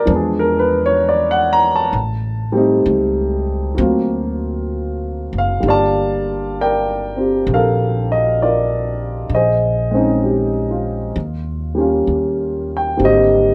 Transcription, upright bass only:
0.07 E2
1.93 A1
2.86 C#2
3.78 D2
5.33 F#1
5.63 G1
7.47 A#1
9.30 A#1
11.16 D#2
12.07 D#2
12.99 G#1

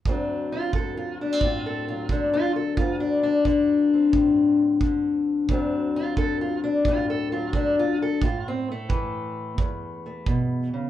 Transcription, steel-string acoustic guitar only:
0.07 D2 F#3 C4 D4
0.52 F4
0.75 D3 A4
0.97 F4
1.21 A3 D4
1.32 C4
1.43 A2 F4
1.66 A4
1.88 F#3 F4
2.11 D3 D4
2.33 F4
2.56 A4
2.77 D2 F4
3.00 D4
3.23 D4
3.46 D3
3.94 C4
4.15 A2
4.82 D3
5.50 D2 F#3 C4 D4
5.96 F4
6.18 D3 A4
6.41 F4
6.64 D4
6.87 A2 F4
7.10 A4
7.32 F#3 F4
7.55 D3 D4
7.79 F4
8.02 A4
8.22 A2 F4
8.48 C4
8.72 A3
8.89 E3
9.59 E2
10.06 A3
10.28 B2
10.73 C#3

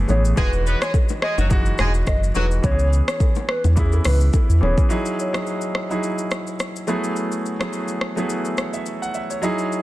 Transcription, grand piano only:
Already playing: E3 A3 B3 G#4
0.08 E3 A3 B3 G#4
0.36 E3 G#3 D#4 F#4
1.49 E3 G#3 D#4 F#4
2.34 E3 G#3 D#4 F#4
2.62 E3 B3 C#4 F#4
2.71 G#4
3.76 E3 B3 C#4 E4
4.61 E3 B3 C#4 G#4
4.89 F#3 D#4 E4 G#4
5.33 F#3 D#4 E4 G#4
5.89 F#3 D#4 E4 G#4
6.87 F#3 A3 B3 E4 G#4
7.59 F#3 A3 B3 E4 G#4
8.16 F#3 A3 B3 E4 G#4
8.58 C#5
8.74 E5
9.02 F#5
9.15 E5
9.30 C#5
9.42 F#3 D#4 E4 G#4

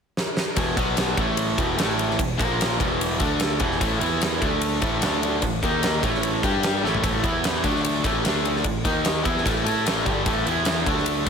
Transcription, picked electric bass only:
0.57 E1
0.77 B1
1.17 A1
1.58 E1
1.80 A1
2.19 E1
2.40 A#1
2.80 E1
3.20 D2
3.61 E1
3.81 A1
4.02 E2
4.42 D2
4.82 A1
5.04 D2
5.43 A1
5.63 D#2
6.04 A1
6.44 G2
6.84 A1
7.04 A1
7.24 E2
7.64 D2
8.04 A1
8.25 D2
8.65 A1
8.85 D#2
9.25 E2
9.46 A1
9.67 A2
9.87 A1
10.07 G1
10.26 A1
10.48 E2
10.87 D2

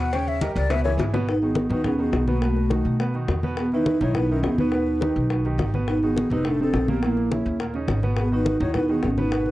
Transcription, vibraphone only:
1.29 D#4
1.43 B3
1.72 D#4
1.86 C#4
1.99 B3
2.30 A#3
2.44 A3
3.60 B3
3.75 D#4
4.02 E4
4.16 D#4
4.32 C#4
4.45 B3
4.58 D#4
5.89 D#4
6.04 B3
6.33 D#4
6.47 D4
6.62 C4
6.91 B3
7.06 A#3
8.21 B3
8.34 D#4
8.62 E4
8.76 D#4
8.90 B3
9.04 C#4
9.18 D#4

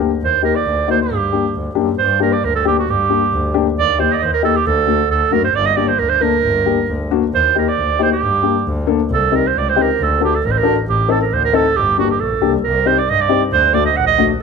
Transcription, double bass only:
0.21 D#2
0.65 D2
1.10 G2
1.54 D2
1.77 F#2
1.99 G2
2.44 D2
2.88 G2
3.33 D2
3.78 D#2
4.22 D#2
4.66 D2
5.10 D2
5.33 F#2
5.54 G1
5.99 D2
6.43 G1
6.88 D2
7.33 D#2
7.78 D2
8.22 G2
8.66 D2
9.10 C2
9.55 C#2
9.99 D2
10.44 A1
10.88 A1
11.32 D2
11.76 G1
12.20 A#1
12.43 C2
12.64 C2
13.08 G2
13.52 D2
13.96 A#1

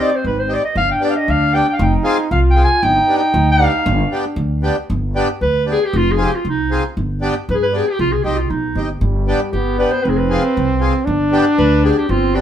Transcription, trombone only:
Already playing: C4
0.75 D4
1.80 D#4
2.31 F4
2.84 D#4
3.86 D4
9.01 G3
9.53 B3
10.03 C4
11.05 D4
12.10 C4

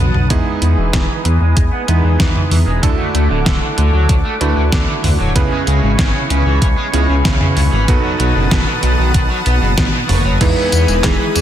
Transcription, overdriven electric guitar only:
0.30 E3
0.46 B3
0.62 B3
0.78 E3
0.94 E3
1.09 E3
1.25 E3
1.41 G#3
1.57 G#3
1.73 B3
1.88 B3
2.04 E3
2.20 E3
2.36 E3
2.51 E3
2.67 G#3
2.83 D3
2.99 A3
3.15 A3
3.30 D3
3.46 D3
3.62 D3
3.78 D3
3.94 F#3
4.09 F#3
4.25 A3
4.41 A3
4.57 D3
4.73 D3
4.88 D3
5.04 D3
5.20 F#3
5.36 C#3
5.52 G#3
5.67 G#3
5.83 C#3
5.99 C#3
6.15 C#3
6.30 C#3
6.46 E3
6.62 E3
6.78 G#3
6.93 G#3
7.09 C#3
7.25 C#3
7.41 C#3
7.57 C#3
7.72 E3
7.88 B2
8.04 F#3
8.20 F#3
8.36 B2
8.51 B2
8.67 B2
8.83 B2
8.98 D#3
9.14 D#3
9.30 F#3
9.46 B3
9.62 B2
9.78 B2
9.93 B2
10.09 F#3
10.25 F#3
10.41 E3
10.57 B3
10.73 B3
10.88 E3
11.04 E3
11.20 E3
11.36 E3

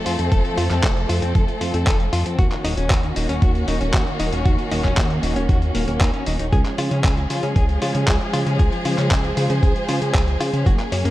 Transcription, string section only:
Already playing: F3 A3 C4 A4
2.38 D#3 A#3 C#4 F#4
6.53 F3 G#3 G#4
8.59 C5
10.66 F#3 A#3 C#4

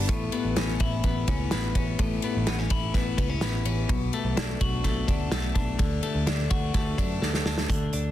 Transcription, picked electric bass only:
0.09 A1
0.45 A1
0.57 A1
0.81 A1
1.04 A1
1.28 C#2
1.53 A1
1.75 A1
1.99 A1
2.37 A1
2.48 A1
2.71 A1
2.94 A1
3.18 C#2
3.41 A1
3.65 A1
3.89 B1
4.24 B1
4.36 B1
4.61 B1
4.84 B1
5.08 D2
5.31 B1
5.56 B1
5.79 D2
6.15 D2
6.27 D2
6.51 D2
6.75 D2
6.99 F#2
7.22 D2
7.46 D2
7.69 D2
7.94 D2

